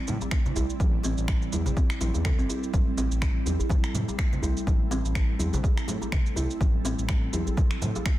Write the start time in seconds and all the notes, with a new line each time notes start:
Already playing: G3 C4 E4 D5
0.07 A2 A3, high conga, low conga, shaker
0.21 djembe tone, shaker
0.31 A3, finger snap, kick, shaker
0.46 low conga, shaker
0.56 C2 E4, djembe tone, djembe bass, shaker
0.70 shaker
0.80 A1 A3, kick, djembe tone, high conga, shaker
1.03 A1 C4, djembe slap, shaker
1.18 A1, shaker
1.28 G3, finger snap, kick, shaker
1.42 shaker
1.53 E2 E4, djembe tone, high conga, shaker
1.66 low conga, djembe bass, shaker
1.77 C4, kick, djembe tone, shaker
1.90 finger snap, shaker
2.01 A1 E4, djembe slap, high conga, shaker
2.14 E2, djembe tone, shaker
2.25 A4, finger snap, kick, low conga, shaker
2.39 G1 C4, shaker
2.49 E4, djembe tone, shaker
2.63 shaker
2.73 A1 A3 A4, kick, high conga, shaker
2.97 A1 C4, djembe slap, shaker
3.11 A1, shaker
3.22 G3, finger snap, kick, shaker
3.46 E2 E4, djembe tone, high conga, shaker
3.59 djembe bass, shaker
3.69 G3, kick, high conga, low conga, shaker
3.84 finger snap, shaker
3.94 A2 A3, high conga, low conga, shaker
4.08 djembe tone, shaker
4.18 A3, finger snap, kick, shaker
4.33 low conga, shaker
4.42 C2 E4, djembe tone, djembe bass, shaker
4.57 shaker
4.67 A1 A3, kick, high conga, shaker
4.91 A1 C4, djembe slap, shaker
5.04 A1, shaker
5.15 G3, finger snap, kick, shaker
5.39 E2 E4, high conga, djembe tone, shaker
5.53 djembe bass, low conga, shaker
5.63 G3, kick, djembe tone, shaker
5.78 finger snap, shaker
5.88 A2 A3, djembe slap, high conga, shaker
6.02 djembe tone, shaker
6.12 A3, finger snap, kick, low conga, shaker
6.26 shaker
6.36 C2 E4, djembe tone, shaker
6.50 shaker
6.61 A1 A3, kick, high conga, shaker
6.85 A1 C4, djembe slap, shaker
6.98 A1, shaker
7.09 G3, finger snap, kick, shaker
7.33 E2 E4, djembe tone, high conga, shaker
7.47 djembe bass, shaker
7.57 G3, kick, high conga, low conga, shaker
7.71 finger snap, shaker
7.82 A2 A3, high conga, low conga, shaker
7.96 djembe tone, shaker
8.06 A3, finger snap, kick, shaker